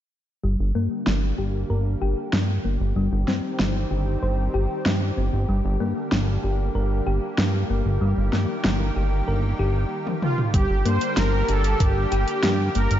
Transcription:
0.44 0.57 G1 loud
0.44 2.94 D3 medium
0.44 0.68 G3 medium
0.44 2.94 G3 medium
0.44 2.94 A#3 medium
0.44 7.97 G4 medium
0.60 0.72 G1 loud
0.75 0.88 G2 medium
0.75 0.90 A#3 loud
1.07 1.33 G1 loud
1.07 1.37 D4 medium
1.07 snare loud
1.38 1.64 G1 medium
1.38 1.63 G4 medium
1.70 1.96 G1 medium
1.70 1.94 A#4 medium
2.02 2.15 G1 medium
2.02 2.26 G4 loud
2.33 2.59 G2 medium
2.33 2.58 D4 medium
2.33 snare loud
2.65 2.78 G1 medium
2.65 2.89 A#3 medium
2.80 2.93 G1 medium
2.96 3.09 G1 loud
2.96 5.46 D#3 medium
2.96 3.21 G3 loud
2.96 10.50 G3 medium
2.96 5.46 C4 medium
3.12 3.25 G1 loud
3.28 3.41 G2 medium
3.28 3.42 C4 loud
3.28 snare medium
3.59 3.85 G1 loud
3.59 3.89 D#4 medium
3.59 snare loud
3.91 4.17 G1 medium
3.91 4.15 G4 medium
4.23 4.48 G1 medium
4.23 4.47 C5 medium
4.54 4.67 G1 medium
4.54 4.79 G4 loud
4.86 5.12 G2 medium
4.86 5.10 D#4 medium
4.86 snare loud
5.17 5.30 G1 medium
5.17 5.42 C4 medium
5.33 5.46 G1 loud
5.49 5.62 G1 medium
5.49 7.99 D3 medium
5.49 5.73 G3 medium
5.49 10.50 A#3 medium
5.65 5.78 G1 loud
5.80 5.93 G2 medium
5.80 5.95 A#3 loud
6.12 6.38 G1 loud
6.12 6.42 D4 medium
6.12 snare loud
6.43 6.70 G1 medium
6.43 6.68 G4 medium
6.75 7.01 G1 medium
6.75 7.00 A#4 medium
7.07 7.20 G1 medium
7.07 7.31 G4 loud
7.38 7.64 G2 medium
7.38 7.63 D4 medium
7.38 snare loud
7.70 7.83 G1 medium
7.70 7.94 A#3 medium
7.86 7.99 G1 loud
8.01 8.14 G1 loud
8.01 10.52 D#3 medium
8.01 8.26 G3 medium
8.01 10.52 G4 medium
8.17 8.30 G1 loud
8.33 8.46 G2 medium
8.33 8.48 A#3 loud
8.33 snare medium
8.64 8.91 G1 loud
8.64 8.95 D#4 medium
8.64 snare loud
8.96 9.22 G1 medium
8.96 9.21 G4 medium
9.28 9.54 G1 medium
9.28 9.52 A#4 medium
9.59 9.85 G1 medium
9.59 9.84 G4 loud
10.07 high tom soft
10.22 10.37 F4 medium
10.22 mid tom medium
10.38 mid tom medium
10.54 10.67 G1 loud
10.54 13.00 D3 medium
10.54 10.79 G3 medium
10.54 13.00 G3 medium
10.54 13.00 A#3 medium
10.54 13.00 G4 medium
10.54 10.87 G4 medium
10.54 kick loud
10.54 closed hi-hat medium
10.70 10.83 G1 loud
10.86 10.99 G2 medium
10.86 11.00 A#3 loud
10.86 11.18 C5 medium
10.86 closed hi-hat medium
11.01 closed hi-hat medium
11.17 11.43 G1 loud
11.17 11.47 D4 medium
11.17 11.47 A#4 loud
11.17 snare loud
11.17 closed hi-hat loud
11.49 11.75 G1 medium
11.49 11.73 G4 medium
11.49 11.82 A4 loud
11.49 closed hi-hat medium
11.64 closed hi-hat medium
11.80 12.06 G1 medium
11.80 12.78 G4 loud
11.80 12.05 A#4 medium
11.80 kick loud
11.80 closed hi-hat loud
12.12 12.25 G1 medium
12.12 12.36 G4 loud
12.12 closed hi-hat medium
12.28 closed hi-hat medium
12.43 12.70 G2 medium
12.43 12.68 D4 medium
12.43 snare loud
12.43 closed hi-hat loud
12.75 12.88 G1 medium
12.75 13.00 A#3 medium
12.75 13.00 A#4 loud
12.75 closed hi-hat medium
12.91 13.00 G1 loud
12.91 closed hi-hat medium

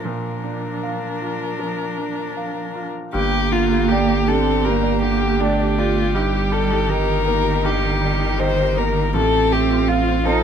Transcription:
0.00 2.90 F3 medium
0.00 2.89 D4 soft
0.00 2.88 A#4 soft
0.05 1.55 A#2 soft
0.43 1.05 D4 soft
0.83 1.44 F5 soft
1.21 1.83 F4 soft
1.59 2.20 F3 soft
1.98 2.59 D4 soft
2.37 2.99 F5 soft
2.75 3.14 F4 soft
3.13 9.16 G1 medium
3.13 4.60 G2 medium
3.13 4.32 A#3 medium
3.13 3.70 G4 medium
3.13 3.54 G4 medium
3.13 9.90 G4 medium
3.51 4.12 D3 soft
3.51 3.90 F4 medium
3.71 4.26 G4 medium
3.89 4.29 G4 medium
3.89 4.24 G4 soft
3.89 4.24 D5 soft
3.89 7.80 G5 soft
4.08 4.82 D5 soft
4.27 4.87 D4 soft
4.27 4.64 G4 medium
4.27 4.66 A4 medium
4.31 4.70 C4 medium
4.65 6.10 G2 soft
4.65 5.19 G4 medium
4.65 5.01 A#4 soft
4.69 5.42 A#3 medium
4.83 5.39 D5 soft
5.02 5.62 D3 soft
5.02 5.42 G4 medium
5.20 5.77 G4 medium
5.40 6.16 A3 medium
5.40 5.80 D4 medium
5.40 5.74 G4 soft
5.40 5.58 D5 soft
5.40 5.74 D5 soft
5.59 6.17 D5 soft
5.78 6.15 D4 soft
5.78 6.16 F4 medium
5.78 6.50 G4 medium
6.14 7.59 G2 medium
6.14 6.89 G3 medium
6.14 6.69 D#4 medium
6.14 6.54 G4 soft
6.51 7.11 G3 soft
6.51 7.43 G4 soft
6.51 6.91 A4 medium
6.70 7.24 D#4 medium
6.88 9.12 D#3 medium
6.88 7.22 G4 soft
6.88 7.67 A#4 medium
6.88 7.22 D#5 soft
6.88 9.17 D#5 soft
7.06 7.81 A#4 soft
7.25 7.85 A#3 soft
7.25 7.61 D#4 medium
7.44 7.99 G4 soft
7.62 9.10 G2 soft
7.62 8.17 D#4 medium
7.62 8.41 G4 medium
7.82 8.36 A#4 soft
8.00 8.61 G3 soft
8.00 9.17 G4 soft
8.19 8.74 D#4 medium
8.37 8.73 G4 soft
8.37 8.55 A#4 medium
8.37 8.79 C5 medium
8.37 8.73 D#5 soft
8.56 9.17 A#4 soft
8.75 9.15 A#3 soft
8.75 9.17 D#4 medium
8.75 9.15 A#4 medium
9.13 10.43 A1 medium
9.13 10.43 A2 medium
9.13 10.24 C4 medium
9.13 9.69 F4 medium
9.13 9.54 A4 medium
9.51 10.10 A3 soft
9.51 9.90 G4 medium
9.51 10.43 A4 soft
9.71 10.24 F4 medium
9.88 10.27 F4 medium
9.88 10.43 F4 medium
9.88 10.22 F4 soft
9.88 10.22 F5 soft
9.88 10.43 F5 soft
10.08 10.43 C5 soft
10.25 10.43 C4 soft
10.25 10.43 D#4 medium
10.25 10.43 F4 medium
10.25 10.43 A4 medium

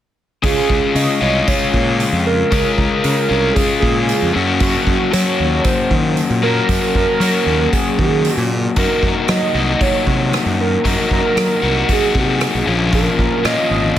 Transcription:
0.42 0.54 C#2 loud
0.42 1.23 C#3 medium
0.42 1.22 G#3 medium
0.42 1.21 C#4 medium
0.42 1.20 F4 medium
0.42 0.92 G#4 loud
0.42 kick medium
0.42 open hi-hat soft
0.70 0.79 C#2 medium
0.70 kick medium
0.95 1.05 C#3 medium
0.95 1.49 D#5 loud
0.95 open hi-hat soft
1.21 1.41 C2 medium
1.21 2.49 C#3 medium
1.21 2.51 G#3 medium
1.21 2.52 C#4 medium
1.21 2.50 F4 medium
1.48 2.00 C#5 medium
1.48 kick loud
1.48 open hi-hat soft
1.74 2.03 A#2 medium
1.74 kick medium
2.00 open hi-hat soft
2.12 2.42 F2 medium
2.26 2.74 A#4 loud
2.51 2.62 C#2 medium
2.51 3.28 C#3 medium
2.51 3.29 G#3 medium
2.51 3.30 C#4 medium
2.51 3.28 F4 medium
2.51 kick loud
2.51 open hi-hat soft
2.76 2.88 C#2 medium
2.76 3.55 A#4 loud
2.76 kick medium
3.04 3.14 C#3 medium
3.04 open hi-hat soft
3.29 3.50 C2 medium
3.29 4.33 C#3 medium
3.29 4.33 G#3 medium
3.29 4.35 C#4 medium
3.29 4.32 F4 medium
3.54 3.79 G#4 loud
3.54 kick loud
3.54 open hi-hat soft
3.80 4.12 A#2 medium
3.80 4.29 G#4 medium
3.80 kick medium
4.09 open hi-hat soft
4.22 4.32 F2 medium
4.33 4.74 F#2 loud
4.33 5.10 F#3 medium
4.33 5.12 A#3 medium
4.33 5.13 C#4 medium
4.33 5.14 F#4 medium
4.60 5.14 F#4 medium
4.60 kick loud
4.60 open hi-hat soft
4.87 4.96 F#2 medium
4.87 kick medium
5.11 6.42 F#3 medium
5.11 5.23 F#3 loud
5.11 6.43 A#3 medium
5.11 6.41 C#4 medium
5.11 6.45 F#4 medium
5.11 5.66 C#5 loud
5.11 open hi-hat soft
5.40 5.59 D#2 medium
5.64 6.16 C5 medium
5.64 kick loud
5.64 open hi-hat soft
5.91 6.20 D#3 medium
5.91 kick medium
6.17 open hi-hat soft
6.30 6.59 A#2 medium
6.42 7.19 F#3 medium
6.42 7.21 A#3 medium
6.42 7.20 C#4 medium
6.42 7.23 F#4 medium
6.42 6.91 A#4 medium
6.69 6.78 F#2 medium
6.69 kick medium
6.69 open hi-hat soft
6.95 7.05 F#2 medium
6.95 7.69 A#4 loud
6.95 kick medium
7.20 8.76 F#3 medium
7.20 7.30 F#3 medium
7.20 8.78 A#3 medium
7.20 8.50 C#4 medium
7.20 8.79 F#4 medium
7.20 open hi-hat soft
7.46 7.66 D#2 medium
7.73 7.97 G#4 medium
7.73 kick medium
7.73 open hi-hat soft
7.99 8.28 D#3 medium
7.99 8.47 G#4 medium
7.99 kick medium
8.25 open hi-hat soft
8.37 8.67 A#2 medium
8.76 8.87 F#2 medium
8.76 9.57 F#3 medium
8.76 9.56 A#3 medium
8.76 9.55 D#4 medium
8.76 9.54 F#4 medium
8.76 9.26 A#4 medium
8.76 kick medium
8.76 open hi-hat soft
9.03 9.13 F#2 medium
9.03 kick medium
9.28 9.38 F#3 loud
9.28 9.83 D#5 loud
9.28 cross-stick medium
9.28 open hi-hat soft
9.54 9.74 C2 medium
9.54 10.83 F#3 medium
9.54 10.85 A#3 medium
9.54 10.84 D#4 medium
9.54 10.83 F#4 medium
9.81 10.33 C#5 medium
9.81 kick loud
9.81 open hi-hat soft
10.07 10.36 C3 medium
10.07 kick medium
10.33 cross-stick medium
10.33 open hi-hat soft
10.45 10.75 F#2 medium
10.61 11.08 A#4 medium
10.84 10.94 F#2 loud
10.84 11.61 F#3 medium
10.84 11.64 A#3 medium
10.84 11.62 D#4 medium
10.84 11.61 F#4 medium
10.84 kick medium
10.84 open hi-hat soft
11.11 11.21 F#2 medium
11.11 11.86 A#4 loud
11.11 kick medium
11.37 11.47 F#3 medium
11.37 cross-stick loud
11.37 open hi-hat soft
11.62 11.82 C2 medium
11.62 12.66 F#3 medium
11.62 12.67 A#3 medium
11.62 12.66 D#4 medium
11.62 12.65 F#4 medium
11.89 12.15 G#4 loud
11.89 kick medium
11.89 open hi-hat soft
12.15 12.44 C3 medium
12.15 12.65 G#4 medium
12.15 kick medium
12.41 cross-stick medium
12.41 open hi-hat soft
12.55 12.64 B1 medium
12.66 13.06 A#1 loud
12.66 13.43 A#2 medium
12.66 13.44 F3 medium
12.66 13.45 A#3 medium
12.66 13.45 C#4 medium
12.66 13.46 F4 medium
12.93 13.46 A#4 medium
12.93 kick loud
12.93 open hi-hat soft
13.19 13.29 A#1 medium
13.19 kick medium
13.43 13.99 A#2 medium
13.43 13.55 A#2 loud
13.43 13.99 F3 medium
13.43 13.99 A#3 medium
13.43 13.99 C#4 medium
13.43 13.99 F4 medium
13.43 13.97 D#5 loud
13.43 cross-stick medium
13.43 open hi-hat soft
13.71 13.91 G#1 medium

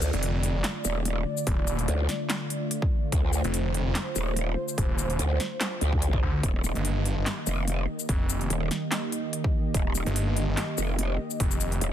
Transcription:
0.00 0.11 D2 loud
0.00 6.39 D3 medium
0.00 6.39 A3 medium
0.00 6.39 F4 medium
0.00 3.09 D5 medium
0.00 closed hi-hat medium
0.00 shaker medium
0.13 0.53 F1 medium
0.13 closed hi-hat soft
0.23 closed hi-hat medium
0.43 closed hi-hat medium
0.55 0.63 F1 medium
0.64 snare loud
0.64 clap loud
0.64 closed hi-hat medium
0.85 1.25 D#1 loud
0.85 closed hi-hat medium
0.85 shaker medium
1.05 closed hi-hat medium
1.37 shaker medium
1.47 1.87 D#1 loud
1.47 kick loud
1.47 closed hi-hat medium
1.67 closed hi-hat medium
1.67 shaker medium
1.79 closed hi-hat soft
1.88 2.07 D2 loud
1.88 closed hi-hat medium
2.09 snare medium
2.09 closed hi-hat medium
2.30 snare loud
2.30 clap loud
2.30 closed hi-hat medium
2.50 closed hi-hat medium
2.71 closed hi-hat medium
2.82 kick loud
3.12 3.43 D2 loud
3.12 6.40 C5 loud
3.12 kick loud
3.12 closed hi-hat medium
3.33 closed hi-hat medium
3.33 shaker medium
3.44 3.84 F1 medium
3.44 closed hi-hat soft
3.54 closed hi-hat medium
3.74 closed hi-hat medium
3.86 3.94 F1 loud
3.95 snare loud
3.95 clap medium
3.95 closed hi-hat medium
4.16 4.56 D#1 loud
4.16 closed hi-hat medium
4.16 shaker medium
4.37 closed hi-hat medium
4.68 shaker soft
4.78 5.18 D#1 medium
4.78 kick loud
4.78 closed hi-hat medium
4.99 closed hi-hat medium
4.99 shaker medium
5.10 closed hi-hat soft
5.19 5.38 D2 loud
5.19 closed hi-hat medium
5.40 snare medium
5.40 closed hi-hat medium
5.61 snare loud
5.61 clap medium
5.61 closed hi-hat medium
5.81 6.21 D2 loud
5.81 closed hi-hat medium
5.93 kick medium
6.02 closed hi-hat medium
6.13 kick loud
6.23 6.42 D2 medium
6.43 6.74 D#1 medium
6.43 11.93 D#3 medium
6.43 11.93 A#3 medium
6.43 11.93 G4 medium
6.43 11.93 D#5 loud
6.43 kick loud
6.43 closed hi-hat medium
6.64 closed hi-hat medium
6.64 shaker medium
6.75 7.15 G1 loud
6.75 closed hi-hat soft
6.85 closed hi-hat medium
7.05 closed hi-hat medium
7.17 7.25 G1 loud
7.26 snare loud
7.26 clap medium
7.26 closed hi-hat medium
7.47 7.87 F1 loud
7.47 closed hi-hat medium
7.47 shaker medium
7.68 closed hi-hat medium
7.99 shaker medium
8.09 8.49 F1 medium
8.09 kick loud
8.09 closed hi-hat medium
8.30 closed hi-hat medium
8.30 shaker medium
8.41 closed hi-hat soft
8.50 8.69 D#1 loud
8.50 closed hi-hat medium
8.71 snare medium
8.71 closed hi-hat medium
8.92 snare loud
8.92 clap medium
8.92 closed hi-hat medium
9.12 closed hi-hat medium
9.33 closed hi-hat medium
9.44 kick loud
9.74 10.05 D#1 loud
9.74 kick loud
9.74 closed hi-hat medium
9.95 closed hi-hat medium
9.95 shaker medium
10.06 10.46 G1 loud
10.06 closed hi-hat soft
10.16 closed hi-hat medium
10.37 closed hi-hat medium
10.48 10.56 G1 loud
10.57 snare loud
10.57 clap medium
10.57 closed hi-hat medium
10.78 11.18 F1 loud
10.78 closed hi-hat medium
10.78 shaker medium
10.99 closed hi-hat medium
11.31 shaker medium
11.40 11.80 F1 loud
11.40 kick loud
11.40 closed hi-hat medium
11.51 shaker medium
11.61 closed hi-hat medium
11.61 shaker medium
11.72 closed hi-hat soft
11.81 11.93 D#1 loud
11.81 closed hi-hat medium

